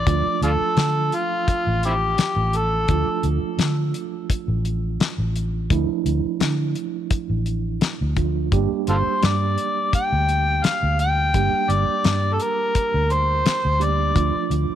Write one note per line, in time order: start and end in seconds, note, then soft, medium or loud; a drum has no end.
0.00 0.43 D5 loud
0.06 0.25 D2 loud
0.06 2.84 F3 medium
0.06 2.84 A3 medium
0.06 2.85 D4 medium
0.06 2.85 F4 medium
0.06 kick medium
0.06 closed hi-hat medium
0.26 muted fingered electric bass stroke soft
0.42 0.59 D2 medium
0.42 0.50 D4 medium
0.42 0.51 F4 medium
0.42 1.16 A4 medium
0.42 closed hi-hat medium
0.77 1.10 D3 medium
0.77 snare loud
0.77 closed hi-hat medium
1.12 1.84 F4 medium
1.12 closed hi-hat medium
1.48 kick medium
1.48 closed hi-hat medium
1.67 2.15 A1 medium
1.83 1.94 C4 medium
1.83 1.94 E4 medium
1.83 2.59 G4 medium
1.83 closed hi-hat medium
2.18 muted fingered electric bass stroke soft
2.18 snare loud
2.18 closed hi-hat medium
2.36 2.85 A1 medium
2.53 3.26 A4 medium
2.53 closed hi-hat medium
2.88 3.06 D2 loud
2.88 5.66 F3 medium
2.88 5.66 A3 medium
2.88 5.67 D4 soft
2.88 5.67 F4 medium
2.88 kick medium
2.88 closed hi-hat medium
3.07 muted fingered electric bass stroke soft
3.23 3.41 D2 medium
3.23 closed hi-hat medium
3.43 muted fingered electric bass stroke soft
3.58 3.92 D3 medium
3.58 snare loud
3.58 closed hi-hat medium
3.94 closed hi-hat medium
4.30 kick medium
4.30 closed hi-hat medium
4.48 4.96 A1 medium
4.65 closed hi-hat medium
5.00 snare loud
5.00 closed hi-hat medium
5.18 5.67 A1 medium
5.36 closed hi-hat medium
5.70 5.88 D2 loud
5.70 8.13 F3 medium
5.70 8.13 A3 medium
5.70 8.13 D4 medium
5.70 8.13 E4 medium
5.70 kick loud
5.70 closed hi-hat medium
5.89 muted fingered electric bass stroke soft
6.06 6.23 D2 medium
6.06 closed hi-hat medium
6.25 muted fingered electric bass stroke soft
6.40 6.74 D3 medium
6.40 snare loud
6.40 closed hi-hat medium
6.75 closed hi-hat medium
7.11 kick medium
7.11 closed hi-hat medium
7.30 7.78 A1 medium
7.46 closed hi-hat soft
7.81 snare loud
7.81 closed hi-hat medium
8.01 8.49 D2 medium
8.16 8.52 F3 medium
8.16 8.52 A3 soft
8.16 8.51 D4 soft
8.16 8.52 F4 medium
8.16 kick medium
8.16 closed hi-hat medium
8.52 8.70 G1 loud
8.52 11.29 G3 medium
8.52 11.30 A#3 medium
8.52 11.30 D4 medium
8.52 11.30 G4 medium
8.52 kick medium
8.52 closed hi-hat medium
8.72 muted fingered electric bass stroke soft
8.87 9.05 G1 medium
8.87 8.97 F4 medium
8.87 8.96 A4 medium
8.87 9.26 C5 medium
8.87 closed hi-hat medium
9.06 muted fingered electric bass stroke soft
9.23 9.56 G2 medium
9.23 9.94 D5 medium
9.23 snare loud
9.23 closed hi-hat medium
9.58 closed hi-hat medium
9.93 10.66 G5 loud
9.93 kick medium
9.93 closed hi-hat medium
10.12 10.60 D2 medium
10.29 closed hi-hat soft
10.64 10.99 F5 medium
10.64 snare medium
10.64 closed hi-hat medium
10.83 11.31 D2 medium
10.99 11.72 G5 medium
10.99 closed hi-hat medium
11.34 11.52 G1 medium
11.34 13.76 G3 medium
11.34 13.76 A#3 medium
11.34 13.76 D4 medium
11.34 13.77 G4 medium
11.34 kick medium
11.34 closed hi-hat medium
11.53 muted fingered electric bass stroke soft
11.69 11.86 G1 medium
11.69 12.36 D5 medium
11.69 closed hi-hat medium
11.88 muted fingered electric bass stroke soft
12.04 12.37 G2 medium
12.04 snare loud
12.04 closed hi-hat medium
12.34 12.44 A4 medium
12.40 13.14 A#4 medium
12.40 closed hi-hat medium
12.75 kick medium
12.75 closed hi-hat medium
12.94 13.42 D2 medium
13.10 13.85 C5 loud
13.10 closed hi-hat soft
13.46 muted fingered electric bass stroke soft
13.46 snare loud
13.46 closed hi-hat medium
13.65 14.12 D2 medium
13.79 14.14 G3 soft
13.79 14.15 A#3 soft
13.79 14.13 D4 soft
13.79 14.15 G4 medium
13.79 closed hi-hat medium
13.83 14.52 D5 medium
14.13 14.33 D2 loud
14.13 14.75 F3 medium
14.13 14.75 A3 medium
14.13 14.75 D4 medium
14.13 14.75 F4 medium
14.13 kick medium
14.13 closed hi-hat medium
14.50 14.68 D2 medium
14.50 closed hi-hat medium